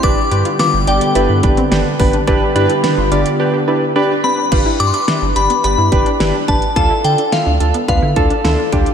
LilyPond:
<<
  \new Staff \with { instrumentName = "Synth bell" } { \time 4/4 \key g \mixolydian \tempo 4 = 107 d'''4 d'''8 g''4. r4 | r2. r8 b''8~ | b''8 d'''32 c'''32 d'''8. b''8 b''4. a''8 | a''8 g''8 f''4 f''4. r8 | }
  \new Staff \with { instrumentName = "Synth keys" } { \time 4/4 \key g \mixolydian <d' g' b'>8 <d' g' b'>8 <d' g' b'>8 <d' g' d''>8 <d' g' b'>8 <d' g' b'>8 <d' g' b'>8 <d' g' b'>8 | <d' g' b'>8 <d' g' b'>8 <d' g' b'>8 <d' g' d''>8 <d' g' b'>8 <d' g' b'>8 <d' g' b'>8 <d' g' b'>8 | <d' g' b'>8 <d' g' b'>8 <d' g' b'>8 <d' g' b'>8 <d' g' b'>8 <d' g' b'>8 <d' g' b'>8 <d' g' b'>8 | <d' f' a'>8 <d' f' a'>8 <d' f' a'>8 <d' f' a'>8 <d' f' b'>8 <d' f' a'>8 <d' f' a'>8 <d' f' g'>8 | }
  \new Staff \with { instrumentName = "Synth pluck" } { \time 4/4 \key g \mixolydian d'8 g'16 f'16 f'8 g'16 g'16 e'8 d'16 c'16 b8 b16 d'16 | e'16 d'16 e'16 e'8 f'16 f'8 g'16 g'16 e'8 d'8 c'16 d'16 | f'16 e'8 d'16 e'16 d'8 b16 b16 e'8 d'16 e'16 d'16 d'8 | f'16 e'8 d'16 e'16 d'8 b16 b16 e'8 d'16 e'16 d'16 d'8 | }
  \new Staff \with { instrumentName = "Analog synth pad" } { \time 4/4 \key g \mixolydian <d g b g'>1 | <d g b g'>1 | r1 | r1 | }
  \new Staff \with { instrumentName = "Analog synth bass" } { \clef bass \time 4/4 \key g \mixolydian g,,16 r16 g,16 r8 g,,16 g,,16 r16 g,,16 g,16 g,,16 r16 g,,16 r16 g,,16 r16 | g,,16 r16 g,16 r8 g,,16 g,,16 r2 r16 | g,,16 r16 g,16 r8 g,,16 g,,16 r16 g,,16 g,16 g,,16 r16 g,,16 r16 g,,16 r16 | d,16 r16 d16 r8 d,16 d,16 r16 d,16 d16 d,16 r16 d,16 r16 d,16 r16 | }
  \new DrumStaff \with { instrumentName = "Drums" } \drummode { \time 4/4 <hh bd>8 hh16 hh16 <hh sn>8 hh16 hh16 hh8 <hh bd>16 hh16 <hh sn>8 <hho bd>16 hh16 | <hh bd>8 hh16 hh16 <hh sn>8 hh16 hh16 r4 r4 | <cymc hh bd>8 hh16 hh16 <hh sn>8 hh16 hh16 hh8 <hh bd>16 hh16 <hh sn>8 <hh bd>16 hh16 | <hh bd>8 hh16 hh16 <hh sn>8 hh16 hh16 <hh bd>8 <hh bd>16 hh16 <hh sn>8 <hh bd>16 hh16 | }
>>